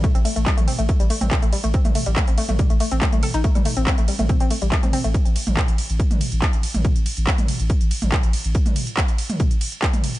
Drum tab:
RD |--x---x---x---x-|--x---x---x---x-|--x---x---x---x-|--x---x---x---x-|
HH |xxoxxxoxxxoxxxox|xxoxxxoxxxoxxxox|xxoxxxoxxxoxxxox|xxoxxxoxxxoxxxox|
CP |----x-------x---|----x-------x---|----x-------x---|----x-------x---|
T2 |-----o-----o----|-o-----o-----o--|-o-----o-----o--|---o-----o-----o|
BD |o---o---o---o---|o---o---o---o---|o---o---o---o---|o---o---o---o---|

RD |--x---x---x---x-|--x---x---x---x-|
HH |xxoxxxoxxxoxxxox|xxoxxxoxxxoxxxox|
CP |----x-------x---|----x-------x---|
T2 |-----o-----o----|-o-----o-----o--|
BD |o---o---o---o---|o---o---o---o---|